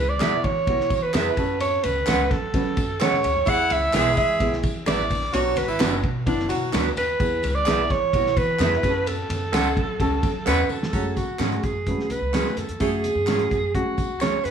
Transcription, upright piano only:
0.21 0.47 B3 medium
0.21 0.47 E4 medium
0.21 0.48 F#4 medium
0.68 0.94 B3 medium
0.68 0.94 E4 medium
0.68 0.94 F#4 medium
1.14 1.37 B3 medium
1.14 1.37 E4 medium
1.14 1.38 G#4 medium
1.38 1.93 C#4 medium
1.38 1.93 F#4 medium
1.38 1.94 A4 medium
2.08 2.34 C#4 medium
2.08 2.34 F#4 medium
2.08 2.34 B4 medium
2.54 2.80 C#4 medium
2.54 2.80 F#4 medium
2.54 2.80 B4 medium
3.00 3.26 C#4 medium
3.00 3.27 F#4 medium
3.00 3.27 G#4 medium
3.47 3.73 B3 medium
3.47 3.73 E4 medium
3.47 3.74 G#4 medium
3.93 4.20 B3 medium
3.93 4.20 E4 medium
3.93 4.20 G#4 medium
4.40 4.66 B3 medium
4.40 4.67 E4 medium
4.40 4.67 G#4 medium
4.86 5.13 B3 medium
4.86 5.13 E4 medium
4.86 5.13 B4 medium
5.33 5.60 B3 medium
5.33 5.60 D4 medium
5.33 5.60 F#4 medium
5.79 6.06 B3 medium
5.79 6.06 D4 medium
5.79 6.06 F#4 medium
6.26 6.53 B3 medium
6.26 6.53 D4 medium
6.26 6.53 E4 loud
6.73 6.99 B3 medium
6.73 6.99 D4 medium
6.73 7.00 F#4 loud
7.20 7.46 B3 medium
7.20 7.46 E4 medium
7.20 7.47 G#4 medium
7.66 7.93 B3 medium
7.66 7.93 E4 medium
7.66 7.93 G#4 medium
8.14 8.40 B3 medium
8.14 8.40 E4 medium
8.14 8.40 F#4 medium
8.59 8.83 B3 medium
8.59 8.83 E4 medium
8.59 8.82 F#4 medium
8.83 9.39 C#4 medium
8.83 9.39 F#4 medium
8.83 8.89 G#4 medium
8.89 9.42 A4 medium
9.53 9.79 C#4 medium
9.53 9.80 F#4 medium
9.53 9.80 A4 medium
10.00 10.26 C#4 medium
10.00 10.26 F#4 medium
10.00 10.27 A4 loud
10.47 10.73 C#4 medium
10.47 10.73 F#4 medium
10.47 10.73 B4 medium
10.93 11.20 F#3 medium
10.93 11.20 A3 medium
10.93 11.20 C#4 medium
10.93 11.20 G#4 medium
11.40 11.67 F#3 medium
11.40 11.67 A3 medium
11.40 11.67 C#4 medium
11.40 11.67 G#4 medium
11.87 12.14 F#3 medium
11.87 12.14 A3 medium
11.87 12.14 C#4 medium
11.87 12.14 B4 medium
12.33 12.60 F#3 medium
12.33 12.60 A3 medium
12.33 12.60 C#4 medium
12.33 12.61 G#4 medium
12.80 13.07 F#3 medium
12.80 13.07 A3 medium
12.80 13.07 C#4 medium
12.80 13.07 G#4 loud
13.27 13.54 F#3 medium
13.27 13.54 A3 medium
13.27 13.54 C#4 medium
13.27 13.54 F#4 medium
13.74 14.01 F#3 medium
13.74 14.01 A3 medium
13.74 14.01 C#4 medium
13.74 14.01 G#4 medium
14.21 14.48 F#3 medium
14.21 14.48 A3 medium
14.21 14.48 C#4 medium
14.21 14.48 G#4 medium

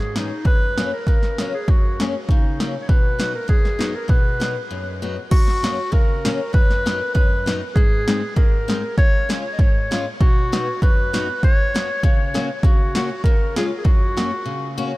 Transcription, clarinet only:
0.00 0.18 G#4 medium
0.17 0.46 D#4 medium
0.46 0.90 B4 loud
0.93 1.06 A#4 medium
1.07 1.51 A#4 medium
1.54 1.72 G#4 medium
1.70 2.05 F#4 medium
2.30 2.72 D#4 medium
2.81 2.90 C#5 medium
2.88 3.34 B4 loud
3.34 3.48 A#4 medium
3.49 3.97 G#4 medium
3.95 4.09 A#4 medium
4.10 4.67 B4 medium
5.31 5.93 F#4 loud
5.92 6.53 A#4 medium
6.53 7.11 B4 loud
7.14 7.58 B4 medium
7.75 8.32 G#4 loud
8.36 8.93 A#4 medium
8.98 9.31 C#5 loud
9.53 9.62 D#5 medium
9.60 10.07 C#5 medium
10.21 10.78 F#4 medium
10.83 11.40 B4 medium
11.44 12.00 C#5 loud
12.04 12.47 C#5 medium
12.64 13.20 F#4 medium
13.24 13.54 A#4 medium
13.57 13.66 G#4 medium
13.77 13.86 G#4 soft
13.84 14.78 F#4 medium

